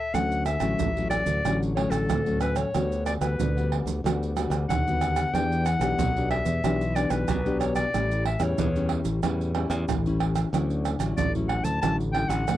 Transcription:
Already playing: trombone A4, clarinet E5
0.14 fingered electric bass D2, nylon-string guitar D3 F#3 A3 C#4, clarinet F#5, pandeiro, tamborim, maracas, surdo
0.32 pandeiro, maracas
0.46 clarinet E5, pandeiro, tamborim, maracas
0.60 fingered electric bass A1, nylon-string guitar F#3 A3 C#4, pandeiro, tamborim, maracas
0.79 fingered electric bass A1, nylon-string guitar A2, pandeiro, maracas, surdo
0.97 nylon-string guitar F#3 A3 C#4, pandeiro, maracas
1.10 clarinet D5, pandeiro, tamborim, maracas
1.26 fingered electric bass D2, pandeiro, maracas
1.45 fingered electric bass A1, nylon-string guitar D3 F#3 A3 C#4, pandeiro, tamborim, maracas, surdo
1.63 pandeiro, maracas
1.76 nylon-string guitar F#3 A3 C#4, clarinet C#5, pandeiro, tamborim
1.90 fingered electric bass A1, clarinet A4, pandeiro, tamborim, maracas
2.09 fingered electric bass D2, nylon-string guitar A2, pandeiro, tamborim, maracas, surdo
2.26 nylon-string guitar F#3 A3 C#4, pandeiro, maracas
2.41 clarinet B4, pandeiro, tamborim, maracas
2.56 clarinet C#5, pandeiro, tamborim, maracas
2.75 fingered electric bass D2, nylon-string guitar D3 G3 B3 F#4, pandeiro, tamborim, maracas, surdo
2.92 pandeiro, maracas
3.06 clarinet D5, pandeiro, tamborim, maracas
3.21 fingered electric bass D2, nylon-string guitar G3 B3 F#4, clarinet B4, pandeiro, tamborim, maracas
3.39 fingered electric bass D2, nylon-string guitar D3, pandeiro, maracas, surdo
3.57 nylon-string guitar G3 B3 F#4, pandeiro, maracas
3.72 pandeiro, tamborim
3.86 fingered electric bass D2, pandeiro, maracas
4.04 fingered electric bass D2, nylon-string guitar D3 G3 B3 F#4, pandeiro, tamborim, maracas, surdo
4.23 pandeiro, maracas
4.36 nylon-string guitar G3 B3 F#4, pandeiro, tamborim, maracas
4.50 fingered electric bass D2, pandeiro, tamborim, maracas
4.69 fingered electric bass D#2, nylon-string guitar D3, clarinet F#5, pandeiro, tamborim, maracas, surdo
4.87 nylon-string guitar G3 B3 F#4, pandeiro, maracas
5.01 pandeiro, tamborim, maracas
5.16 pandeiro, tamborim, maracas
5.33 fingered electric bass E2, nylon-string guitar E3 B3 D4 G4, clarinet G5, pandeiro, tamborim, maracas, surdo
5.52 pandeiro, maracas
5.66 clarinet F#5, pandeiro, tamborim, maracas
5.79 fingered electric bass B1, nylon-string guitar B3 D4 G4, pandeiro, tamborim, maracas
5.98 fingered electric bass B1, nylon-string guitar B2, pandeiro, maracas, surdo
6.17 nylon-string guitar B3 D4 G4, pandeiro, maracas
6.31 clarinet E5, pandeiro, tamborim
6.45 fingered electric bass E2, pandeiro, maracas
6.64 fingered electric bass B1, nylon-string guitar E3 B3 D4 G4, pandeiro, tamborim, maracas, surdo
6.81 pandeiro, maracas
6.95 nylon-string guitar B3 D4 G4, clarinet D5, pandeiro, tamborim, maracas
7.10 fingered electric bass B1, clarinet B4, pandeiro, tamborim, maracas
7.28 fingered electric bass B1, nylon-string guitar B2, pandeiro, tamborim, maracas, surdo
7.46 nylon-string guitar B3 D4 G4, pandeiro, maracas
7.59 clarinet C#5, pandeiro, tamborim, maracas
7.76 clarinet D5, pandeiro, tamborim, maracas
7.94 fingered electric bass A1, nylon-string guitar A2 G3 E4, pandeiro, tamborim, maracas, surdo
8.11 pandeiro, maracas
8.26 clarinet E5, pandeiro, tamborim
8.40 fingered electric bass E2, nylon-string guitar G3 C#4 E4, clarinet C#5, pandeiro, tamborim, maracas
8.58 fingered electric bass E2, nylon-string guitar E3, pandeiro, maracas, surdo
8.76 nylon-string guitar G3 C#4 E4, pandeiro, maracas
8.89 pandeiro, tamborim
9.05 fingered electric bass A1, pandeiro, maracas
9.23 fingered electric bass E2, nylon-string guitar A2 G3 C#4 E4, pandeiro, tamborim, maracas, surdo
9.41 pandeiro, maracas
9.55 nylon-string guitar G3 C#4 E4, pandeiro, tamborim
9.70 fingered electric bass E2, pandeiro, tamborim, maracas
9.88 fingered electric bass A1, nylon-string guitar E3, pandeiro, tamborim, maracas, surdo
10.06 nylon-string guitar G3 C#4 E4, pandeiro, maracas
10.20 pandeiro, tamborim
10.36 pandeiro, tamborim, maracas
10.53 fingered electric bass D2, nylon-string guitar D3 F#3 C#4 E4, pandeiro, tamborim, maracas, surdo
10.70 pandeiro, maracas
10.85 pandeiro, tamborim, maracas
10.99 fingered electric bass A1, nylon-string guitar F#3 C#4 E4, pandeiro, tamborim, maracas
11.17 fingered electric bass A1, nylon-string guitar A2, clarinet D5, pandeiro, maracas, surdo
11.35 nylon-string guitar F#3 C#4 E4, pandeiro, maracas
11.48 clarinet F#5, pandeiro, tamborim
11.63 fingered electric bass D2, clarinet A5, pandeiro, maracas
11.81 fingered electric bass A1, nylon-string guitar D3 F#3 C#4 E4, clarinet A5, pandeiro, tamborim, maracas, surdo
12.00 pandeiro, maracas
12.12 nylon-string guitar F#3 C#4, clarinet G5, pandeiro, tamborim
12.17 nylon-string guitar E4
12.28 fingered electric bass A1, clarinet F#5, pandeiro, tamborim, maracas
12.48 fingered electric bass D2, nylon-string guitar A2, pandeiro, tamborim, maracas, surdo

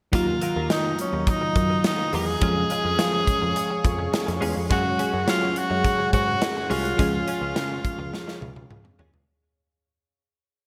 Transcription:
0.12 picked electric bass D#2, fm electric piano D#3 F#3 A#3 F4, clean electric guitar F#3 A#3 F4 A#4, ambient pad F#3 D#5 F5 A#5, tenor saxophone F4, kick, closed hi-hat
0.28 muted clean electric guitar stroke
0.41 clean electric guitar F#3 A#3 F4 A#4, closed hi-hat
0.56 picked electric bass D#2, clean electric guitar F#3 A#3 F4 A#4
0.70 picked electric bass D#3, tenor saxophone D#4, muted clean electric guitar stroke, snare, closed hi-hat
0.85 muted clean electric guitar stroke
0.99 tenor saxophone C#4, closed hi-hat
1.13 picked electric bass D#2, muted clean electric guitar stroke
1.27 tenor saxophone D#4, muted clean electric guitar stroke, kick, closed hi-hat
1.41 muted clean electric guitar stroke
1.56 picked electric bass F#2, kick, closed hi-hat
1.70 muted clean electric guitar stroke
1.84 tenor saxophone D#4, muted clean electric guitar stroke, snare, closed hi-hat
1.98 muted clean electric guitar stroke
2.13 picked electric bass E2, clean electric guitar F#3 A#3 F4 A#4, tenor saxophone G#4, open hi-hat
2.27 muted clean electric guitar stroke
2.40 picked electric bass F2, fm electric piano F3 G#3 C#4 G#4, clean electric guitar G#3 C#4 F4 G#4, ambient pad G#4 C#5 C#6, kick, closed hi-hat
2.56 muted clean electric guitar stroke
2.70 clean electric guitar G#3 C#4 F4 G#4, closed hi-hat
2.84 picked electric bass F2, clean electric guitar G#3 C#4 F4 G#4
2.99 picked electric bass F3, muted clean electric guitar stroke, snare, closed hi-hat
3.13 muted clean electric guitar stroke
3.27 kick, closed hi-hat
3.42 picked electric bass F2, muted clean electric guitar stroke
3.56 muted clean electric guitar stroke, closed hi-hat
3.71 muted clean electric guitar stroke
3.85 picked electric bass F2, kick, closed hi-hat
3.99 muted clean electric guitar stroke
4.13 muted clean electric guitar stroke, snare, closed hi-hat
4.27 picked electric bass F2, muted clean electric guitar stroke, closed hi-hat
4.41 picked electric bass E2, clean electric guitar G#3 C#4 F4 G#4, open hi-hat
4.56 picked electric bass F2, muted clean electric guitar stroke
4.70 picked electric bass F#2, fm electric piano F#3 G#3 C#4 G#4, clean electric guitar G#3 C#4 F#4 G#4, tenor saxophone F#4, ambient pad G#4 C#5 F#5, kick, closed hi-hat
4.84 muted clean electric guitar stroke
4.98 clean electric guitar G#3 C#4 F#4 G#4, closed hi-hat
5.13 picked electric bass F#2, clean electric guitar G#3 C#4 F#4 G#4
5.27 picked electric bass F#3, tenor saxophone F4, muted clean electric guitar stroke, snare, closed hi-hat
5.41 muted clean electric guitar stroke
5.56 tenor saxophone F#4, closed hi-hat
5.70 picked electric bass F#2, muted clean electric guitar stroke
5.84 muted clean electric guitar stroke, kick, closed hi-hat
5.99 muted clean electric guitar stroke
6.13 picked electric bass G#2, tenor saxophone F#4, kick, closed hi-hat
6.28 muted clean electric guitar stroke
6.42 muted clean electric guitar stroke, snare, closed hi-hat
6.56 muted clean electric guitar stroke
6.70 picked electric bass C2, clean electric guitar G#3 C#4 F#4 G#4, tenor saxophone F4, open hi-hat
6.84 muted clean electric guitar stroke, closed hi-hat
6.97 picked electric bass C#2, fm electric piano F3 G#3 C#4 G#4, clean electric guitar G#3 C#4 F4 G#4, ambient pad F5, kick, closed hi-hat
7.13 muted clean electric guitar stroke
7.26 clean electric guitar G#3 C#4 F4 G#4, closed hi-hat
7.41 picked electric bass C#2, clean electric guitar G#3 C#4 F4 G#4
7.55 picked electric bass C#3, muted clean electric guitar stroke, snare, closed hi-hat
7.70 muted clean electric guitar stroke
7.85 kick, closed hi-hat
7.98 picked electric bass C#2, muted clean electric guitar stroke
8.13 muted clean electric guitar stroke, snare
8.27 muted clean electric guitar stroke, snare
8.41 picked electric bass C#2, high tom
8.56 muted clean electric guitar stroke, high tom
8.70 picked electric bass C#2, muted clean electric guitar stroke, mid tom
8.84 muted clean electric guitar stroke, mid tom
8.99 picked electric bass D#2, clean electric guitar G#3 C#4 F4 G#4, floor tom
9.13 picked electric bass C#2, muted clean electric guitar stroke, floor tom

